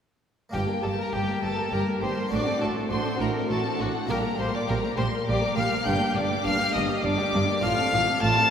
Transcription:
0.49 A#3 D4 G4
0.54 G1 G2 G3 G4 G5
0.69 A#3 A#4
0.83 G1 G2 G3 G4 A4 A5
0.98 A#3 A#4 A#5
1.13 G1 G2 G3 G4 G5
1.27 A#3 A#4
1.42 G1 G2 G3 G4 A4 A5
1.56 A#3 A#4
1.71 G1 G2 G3 G4 A#4 A#5
1.85 A#3 A#4
2.00 G1 G2 G3 G4 C5 C6
2.16 A#3 A#4
2.27 C4 D4 F#4
2.31 A1 A2 D4 D5 D6
2.45 C4 A4
2.60 A1 A2 D4 F#4 A4 A5
2.76 C4 A4
2.90 A1 A2 D4 F#4 C5 C6
3.04 C4 A4
3.20 A1 A2 D4 F#4 A#4 A#5
3.34 C4 A4
3.49 A1 A2 D4 F#4 A4 A5
3.65 C4 A4
3.79 A1 A2 D4 F#4 F#5
3.95 C4 A4
4.06 A#2 A#3 D4 G4 A#5
4.10 A#1 A#2 G3 A#4
4.24 A#3 A#4
4.38 A#1 A#2 G3 G4 C5 C6
4.53 A#3 A#4 D5 D6
4.68 A#1 A#2 G3 G4 A#4 A#5
4.83 A#3 A#4
4.97 A#1 A#2 G3 G4 C5 C6
5.13 A#3 A#4
5.27 A#1 A#2 G3 G4 D5 D6
5.43 A#3 A#4
5.57 A#1 A#2 G3 G4 F5 F6
5.71 A#3 A#4
5.82 A#3 D4 G4
5.86 G1 G2 G3 D4 G5 G6
6.00 A#3 G4
6.15 G1 G2 G3 D4 D5 D6
6.31 A#3 G4
6.45 G1 G2 G3 D4 F5 F6
6.61 A#3 G4
6.74 G1 G2 G3 D4 D#5 D#6
6.90 A#3 G4
7.04 G1 G2 G3 D4 D5 D6
7.19 A#3 G4
7.34 G1 G2 G3 D4
7.49 A#3 G4
7.60 A1 A2 A3 C4 F4 C5 F5 F6
7.64 A2 F4
7.78 C4 A4
7.93 A1 A2 A3 F4
8.08 C4 A4
8.21 A1 A2 A3 F4 A5 A6
8.37 C4 A4

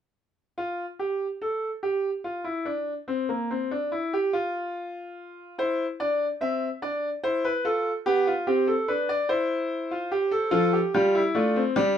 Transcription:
0.58 F4
0.99 G4
1.42 A4
1.83 G4
2.24 F4
2.44 E4
2.65 D4
3.08 C4
3.29 A#3
3.51 C4
3.71 D4
3.92 E4
4.13 G4
4.33 F4
5.58 E4 C5
6.00 D4 D5
6.41 C4 E5
6.82 D4 D5
7.23 E4 C5
7.45 B4
7.65 F4 A4
8.06 B3 G4
8.27 F4
8.47 C4 G4
8.67 A4
8.88 D4 B4
9.09 D5
9.29 E4 C5
9.91 F4
10.12 G4
10.31 A4
10.51 F3 F4 A4
10.73 G4
10.94 G3 F4 G4
11.15 E4
11.35 A3 D4 F4
11.56 C4
11.76 G3 D4 G4

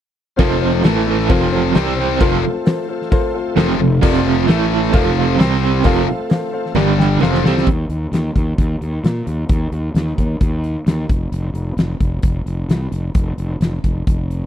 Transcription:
0.36 F1 F2 C3 C4 F4 A4 C5, kick, open hi-hat, cowbell
0.40 F3
0.61 C4 F4 A4
0.83 A1 A2 E3 A3 E4 A4 E5, snare, open hi-hat, cowbell
1.07 A3 E4 A4
1.20 snare
1.28 F1 F2 C3 F3 C4 F4 A4 C5, kick, open hi-hat, cowbell
1.52 C4 F4 A4
1.74 C2 C3 G3 C4 G4 C5, snare, open hi-hat, cowbell
1.97 C4 G4 C5, snare
2.20 F1 F2 C3 F3 A3 C4 F4 A4 C5, kick, open hi-hat, cowbell
2.43 F4 A4 C5
2.65 F4 A4 C5, snare, open hi-hat, cowbell
2.88 F4 A4 C5
3.02 snare
3.10 F4 A4 C5, kick, open hi-hat, cowbell
3.34 F4 A4 C5
3.56 F1 F2 C3 F3 F4 A4 C5, snare, open hi-hat, cowbell
3.79 F1 F2 C3 F4 A4 C5
4.02 F1 F2 C3 F3 F4 A4 D5, kick, crash, cowbell
4.25 F4 A4 C5
4.46 A1 A2 E3 A3 E4 A4 E5, snare, open hi-hat, cowbell
4.71 E4 A4 E5
4.84 snare
4.91 F1 F2 C3 F3 A3 C4 F4 A4 C5 F5, kick, open hi-hat, cowbell
5.17 A4 C5 F5
5.37 C2 C3 G3 C4 G4 C5 G5, snare, open hi-hat, cowbell
5.62 G4 C5 G5
5.83 F1 F2 C3 F3 A3 C4 F4 A4 C5 F5, kick, open hi-hat, cowbell
6.07 A4 C5 F5
6.30 A4 C5 F5, snare, open hi-hat, cowbell
6.52 A4 C5 F5
6.66 snare
6.74 G1 G2 D3 G3 D4 G4 D5 G5, snare, cowbell
6.97 G4 D5 G5, snare
7.20 F1 F2 C3 F3 C4 F4 A4 C5 F5, snare, cowbell
7.34 snare
7.44 C2 C3 G3 C4 A4 C5 F5, snare
7.57 snare
7.67 D#2, kick, closed hi-hat
7.89 D#2, closed hi-hat
8.12 D#2, snare, closed hi-hat
8.36 D#2, kick, closed hi-hat
8.58 D#2, kick, closed hi-hat
8.81 D#2, closed hi-hat
9.04 A#2, snare, closed hi-hat
9.27 D#2, closed hi-hat
9.49 D#2, kick, closed hi-hat
9.72 D#2, closed hi-hat
9.94 D#2, snare, closed hi-hat
10.18 D#2, kick, closed hi-hat
10.41 D#2, kick, closed hi-hat
10.64 closed hi-hat
10.87 D#2, snare, closed hi-hat
11.09 F1, kick, closed hi-hat
11.32 F1, closed hi-hat
11.54 F1, closed hi-hat
11.77 F1, snare, closed hi-hat
12.00 F1, kick, closed hi-hat
12.22 F1, kick, closed hi-hat
12.46 F1, closed hi-hat
12.69 C2, snare, closed hi-hat
12.92 F1, closed hi-hat
13.15 F1, kick, closed hi-hat
13.38 F1, closed hi-hat
13.60 F1, snare, closed hi-hat
13.84 F1, kick, closed hi-hat
14.07 F1, kick, closed hi-hat
14.31 closed hi-hat

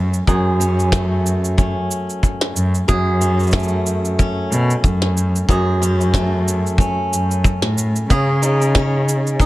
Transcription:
Already playing: F#2 A3 C#4 G#4
0.14 shaker
0.27 F#2 G#4, kick, shaker
0.60 C#4, shaker
0.80 shaker
0.92 A3, kick, snare, shaker
1.26 shaker
1.45 shaker
1.57 C#4, kick, shaker
1.91 shaker
2.10 shaker
2.23 kick, shaker
2.41 snare
2.55 F#2, shaker
2.75 shaker
2.88 F#2 G#4, kick, shaker
3.21 C#4, shaker
3.40 shaker
3.43 shaker
3.47 shaker
3.51 A3, kick, snare, shaker
3.59 shaker
3.63 shaker
3.68 shaker
3.86 shaker
4.05 shaker
4.19 C#4, kick, shaker
4.51 B2, shaker
4.70 shaker
4.84 F#2, kick, shaker
5.02 snare
5.17 shaker
5.36 shaker
5.49 F#2 G#4, kick, shaker
5.82 C#4, shaker
6.01 shaker
6.14 A3, kick, snare, shaker
6.48 shaker
6.67 shaker
6.78 C#4, kick, shaker
7.12 F#2, shaker
7.31 shaker
7.44 kick, shaker
7.62 A2, snare
7.78 shaker
7.96 shaker
8.10 C#3 G#4, kick, shaker
8.42 D#4, shaker
8.62 shaker
8.75 C#4, kick, snare, shaker
9.09 shaker
9.27 shaker
9.40 D#4, kick, shaker

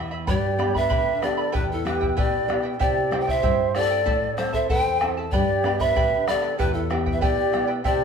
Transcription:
Already playing: E2 E3 E4 E5 G5
0.11 E4 E5 B5
0.27 G2 G4 B4 D5 G5 B5, bombo low
0.58 B3 D4 G4 B4 D5 G5 B5, bombo rim
0.74 B4 D5 E5 B5, bombo low
0.89 D3 G4 B4 D5 G5 B5, bombo low
1.22 B3 D4 G4 A4 B4 D5 G5 B5, bombo rim
1.37 B4 D5 B5
1.52 E2 E4 G4 B4 E5 G5, bombo low
1.71 E4 A4
1.85 B3 E4 G4 B4 E5 G5, bombo rim
1.89 G4
2.01 E4 B4 G5, bombo low
2.17 B2 E4 G4 B4 D5 E5 G5, bombo low
2.21 G4
2.48 B3 E4 G4 B4 E5 G5, bombo rim
2.63 E4 B4 G5
2.79 C3 E4 G4 C5 D5 E5 G5, bombo low
3.11 C4 E4 G4 C5 E5 G5, bombo rim
3.20 D5 G5
3.27 E4 C5 E5 G5, bombo low
3.43 G2 E4 G4 C5 E5 G5, bombo low
3.75 C4 E4 G4 A4 C5 D5 E5 G5, bombo rim
3.90 E4 C5 G5
4.06 A2 E4 A4 C5 E5 A5, bombo low
4.37 C4 E4 A4 C5 E5 A5, bombo rim
4.53 E4 A4 C5 E5 A5, bombo low
4.69 E2 E4 A4 C5 E5 G5 A5, bombo low
5.01 C4 E4 A4 E5 A5, bombo rim
5.17 E4 A4 A5
5.31 G2 G4 B4 D5 G5 B5, bombo low
5.63 B3 D4 G4 B4 D5 G5 B5, bombo rim
5.79 B4 C5 D5 E5 B5, bombo low
5.86 B4
5.96 D3 G4 B4 D5 G5 B5, bombo low
6.27 B3 D4 G4 A4 B4 D5 G5 B5, bombo rim
6.42 B4 D5 B5
6.58 E2 E4 G4 B4 E5 G5, bombo low
6.74 E4 A4
6.90 B3 E4 G4 B4 E5 G5, bombo rim
7.06 E4 B4 G5, bombo low
7.12 B4 E5
7.21 B2 E4 G4 B4 D5 E5 G5, bombo low
7.52 B3 E4 G4 B4 E5 G5, bombo rim
7.67 E4 B4 G5
7.84 C3 E4 G4 C5 D5 E5 G5, bombo low

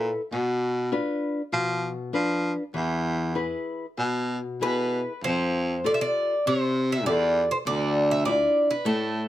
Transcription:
Already playing: A#2 E4 A4 B4
0.32 B2
0.92 D4 F4 B4
1.52 B2 F3
2.13 F3 D4 F4 B4
2.74 E2 E3
3.35 E4 G#4 B4
3.97 B2
4.61 B2 E4 G#4 B4
5.24 F2 F3 C5
5.84 F4 G4 A4 D5
5.94 E5
6.01 D5
6.47 C3 C5
6.92 E5
7.06 E2 F4 G4 A4 D5
7.51 C5
7.66 D2 D3 D5
8.11 E5
8.25 D4 E4 F4 D5
8.71 B4
8.85 A2 A3 A4

